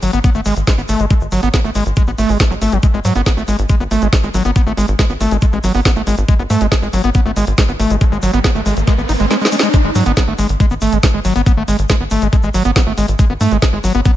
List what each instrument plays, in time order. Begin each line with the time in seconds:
0.02 analog synth bass G#1, acid bass F#3, open hi-hat, shaker
0.13 analog synth bass G#1, acid bass B3, closed hi-hat, shaker
0.24 acid bass B3, kick, closed hi-hat, shaker
0.35 analog synth bass G#1, acid bass A3, shaker
0.45 analog synth bass G#1, acid bass G#3, open hi-hat, shaker
0.57 analog synth bass G#1, closed hi-hat, shaker
0.67 acid bass G#3, kick, snare, closed hi-hat, shaker
0.78 analog synth bass G#1, acid bass B3, shaker
0.89 analog synth bass G#1, acid bass A3, open hi-hat, shaker
0.99 analog synth bass G#1, acid bass G#3, closed hi-hat, shaker
1.10 acid bass G#3, kick, closed hi-hat, shaker
1.21 analog synth bass G#1, shaker
1.32 analog synth bass G#1, acid bass F#3, open hi-hat, shaker
1.43 analog synth bass G#1, acid bass B3, closed hi-hat, shaker
1.54 acid bass B3, kick, snare, closed hi-hat, shaker
1.64 analog synth bass G#1, acid bass A3, shaker
1.75 analog synth bass G#1, acid bass G#3, open hi-hat, shaker
1.86 analog synth bass G#1, closed hi-hat, shaker
1.96 acid bass G#3, kick, closed hi-hat, shaker
2.07 analog synth bass A1, acid bass B3, shaker
2.18 analog synth bass G#1, acid bass A3, open hi-hat, shaker
2.29 analog synth bass G#1, acid bass G#3, open hi-hat, shaker
2.39 acid bass A3, kick, snare, closed hi-hat, shaker
2.51 analog synth bass G#1, acid bass F#3, shaker
2.62 analog synth bass G#1, acid bass A3, open hi-hat, shaker
2.72 analog synth bass G#1, acid bass F#3, closed hi-hat, shaker
2.83 acid bass G#3, kick, closed hi-hat, shaker
2.94 analog synth bass G#1, acid bass G#3, shaker
3.05 analog synth bass G#2, acid bass F#3, open hi-hat, shaker
3.16 analog synth bass G#1, acid bass B3, closed hi-hat, shaker
3.26 acid bass B3, kick, snare, closed hi-hat, shaker
3.37 analog synth bass G#1, acid bass A3, shaker
3.48 analog synth bass G#1, acid bass G#3, open hi-hat, shaker
3.59 analog synth bass G#1, closed hi-hat, shaker
3.69 acid bass G#3, kick, closed hi-hat, shaker
3.80 analog synth bass G#1, acid bass B3, shaker
3.91 analog synth bass G#1, acid bass A3, open hi-hat, shaker
4.01 analog synth bass G#1, acid bass G#3, closed hi-hat, shaker
4.13 acid bass G#3, kick, snare, closed hi-hat, shaker
4.23 analog synth bass G#1, acid bass G#3, shaker
4.34 analog synth bass G#1, acid bass F#3, open hi-hat, shaker
4.45 analog synth bass G#1, acid bass B3, closed hi-hat, shaker
4.56 acid bass B3, kick, closed hi-hat, shaker
4.67 analog synth bass G#1, acid bass A3, shaker
4.77 analog synth bass G#1, acid bass G#3, open hi-hat, shaker
4.88 analog synth bass G#1, closed hi-hat, shaker
4.99 acid bass G#3, kick, snare, closed hi-hat, shaker
5.09 analog synth bass G#1, acid bass B3, shaker
5.21 analog synth bass G#1, acid bass A3, open hi-hat, shaker
5.31 analog synth bass G#1, acid bass G#3, closed hi-hat, shaker
5.42 acid bass G#3, kick, closed hi-hat, shaker
5.53 analog synth bass A1, acid bass G#3, shaker
5.64 analog synth bass G#1, acid bass F#3, open hi-hat, shaker
5.74 analog synth bass G#1, acid bass B3, open hi-hat, shaker
5.85 acid bass B3, kick, snare, closed hi-hat, shaker
5.96 analog synth bass G#1, acid bass A3, shaker
6.07 analog synth bass G#1, acid bass G#3, open hi-hat, shaker
6.18 analog synth bass G#1, closed hi-hat, shaker
6.28 acid bass G#3, kick, closed hi-hat, riser, shaker
6.39 analog synth bass G#1, acid bass B3, shaker
6.50 analog synth bass G#2, acid bass A3, open hi-hat, shaker
6.60 analog synth bass G#1, acid bass G#3, closed hi-hat, shaker
6.72 acid bass G#3, kick, snare, closed hi-hat, shaker
6.82 analog synth bass G#1, acid bass G#3, shaker
6.93 analog synth bass G#1, acid bass F#3, open hi-hat, shaker
7.04 analog synth bass G#1, acid bass B3, closed hi-hat, shaker
7.14 acid bass B3, kick, closed hi-hat, shaker
7.26 analog synth bass G#1, acid bass A3, shaker
7.36 analog synth bass G#1, acid bass G#3, open hi-hat, shaker
7.47 analog synth bass G#1, closed hi-hat, shaker
7.58 acid bass G#3, kick, snare, closed hi-hat, shaker
7.68 analog synth bass G#1, acid bass B3, shaker
7.80 analog synth bass G#1, acid bass A3, open hi-hat, shaker
7.90 analog synth bass G#1, acid bass G#3, closed hi-hat, shaker
8.01 acid bass G#3, kick, closed hi-hat, shaker
8.12 analog synth bass G#1, acid bass G#3, shaker
8.22 analog synth bass G#1, acid bass F#3, open hi-hat, shaker
8.33 analog synth bass G#1, acid bass B3, closed hi-hat, shaker
8.44 acid bass B3, kick, snare, closed hi-hat, shaker
8.55 analog synth bass G#1, acid bass A3, shaker
8.66 analog synth bass G#1, acid bass G#3, open hi-hat, shaker
8.77 analog synth bass G#1, closed hi-hat, shaker
8.87 acid bass G#3, kick, snare, closed hi-hat, shaker
8.98 analog synth bass A1, acid bass B3, shaker
9.09 analog synth bass G#1, acid bass D#4, open hi-hat, shaker
9.20 analog synth bass G#1, acid bass G#3, open hi-hat, shaker
9.30 acid bass G#3, snare, closed hi-hat, shaker
9.41 acid bass G#3, shaker
9.45 snare
9.52 acid bass G#3, open hi-hat, shaker
9.59 acid bass G#3, snare, closed hi-hat, shaker
9.74 acid bass G#3, kick, closed hi-hat, shaker
9.85 analog synth bass G#1, acid bass G#3
9.95 analog synth bass G#2, acid bass F#3, open hi-hat, shaker
10.06 analog synth bass G#1, acid bass B3, closed hi-hat, shaker
10.17 acid bass B3, kick, snare, closed hi-hat, shaker
10.28 analog synth bass G#1, acid bass A3
10.38 analog synth bass G#1, acid bass G#3, open hi-hat, shaker
10.49 analog synth bass G#1, closed hi-hat, shaker
10.60 acid bass G#3, kick, closed hi-hat, shaker
10.70 analog synth bass G#1, acid bass B3, shaker
10.81 analog synth bass G#1, acid bass A3, open hi-hat, shaker
10.92 analog synth bass G#1, acid bass G#3, closed hi-hat, shaker
11.03 acid bass G#3, kick, snare, closed hi-hat, shaker
11.14 analog synth bass G#1, acid bass G#3
11.25 analog synth bass G#1, acid bass F#3, open hi-hat, shaker
11.36 analog synth bass G#1, acid bass B3, closed hi-hat, shaker
11.46 acid bass B3, kick, closed hi-hat, shaker
11.57 analog synth bass G#1, acid bass A3
11.68 analog synth bass G#1, acid bass G#3, open hi-hat, shaker
11.79 analog synth bass G#1, closed hi-hat, shaker
11.89 acid bass G#3, kick, snare, closed hi-hat, shaker
12.00 analog synth bass G#1, acid bass B3
12.11 analog synth bass G#1, acid bass A3, open hi-hat, shaker
12.22 analog synth bass G#1, acid bass G#3, closed hi-hat, shaker
12.33 acid bass G#3, kick, closed hi-hat, shaker
12.43 analog synth bass A1, acid bass G#3, shaker
12.54 analog synth bass G#1, acid bass F#3, open hi-hat, shaker
12.65 analog synth bass G#1, acid bass B3, closed hi-hat, shaker
12.76 acid bass B3, kick, snare, closed hi-hat, shaker
12.87 analog synth bass G#1, acid bass A3
12.97 analog synth bass G#1, acid bass G#3, open hi-hat, shaker
13.08 analog synth bass G#1, closed hi-hat, shaker
13.19 acid bass G#3, kick, closed hi-hat, shaker
13.30 analog synth bass G#1, acid bass B3
13.41 analog synth bass G#2, acid bass A3, open hi-hat, shaker
13.51 analog synth bass G#1, acid bass G#3, closed hi-hat, shaker
13.62 acid bass G#3, kick, snare, closed hi-hat, shaker
13.73 analog synth bass G#1, acid bass G#3
13.84 analog synth bass G#1, acid bass F#3, open hi-hat, shaker
13.94 analog synth bass G#1, acid bass B3, closed hi-hat, shaker
14.05 acid bass B3, kick, closed hi-hat, shaker